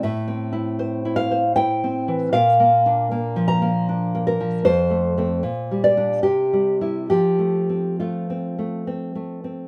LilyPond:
\new Staff \with { instrumentName = "Nylon-string guitar" } { \time 3/4 \key f \major \tempo 4 = 77 << { e''4. f''8 g''4 | f''4. bes''8 r8 bes'8 | c''4. d''8 g'4 | g'4 f'4 r4 | } \\ { \tuplet 3/2 { a,8 c'8 e'8 c''8 e'8 c''8 e'8 c'8 e8 } | \tuplet 3/2 { bes,8 bes8 d'8 bes8 f8 bes8 d'8 bes8 f8 } | \tuplet 3/2 { f,8 a8 <a c'>8 bes,8 g8 <g d'>8 c8 g8 <g e'>8 } | \tuplet 3/2 { f8 a8 c'8 a8 c'8 a8 c'8 a8 c'8 } | } >> }